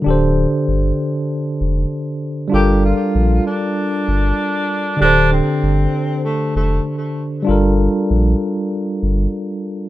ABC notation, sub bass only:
X:1
M:4/4
L:1/16
Q:"Swing 16ths" 1/4=97
K:Gm
V:1 name="Sub bass" clef=bass
D,,,3 z G,,,2 z4 F,,,2 z4 | G,,,3 z B,,,2 z4 G,,,2 z4 | D,,,3 z G,,,2 z4 F,,,2 z4 | G,,,3 z B,,,2 z4 G,,,2 z4 |]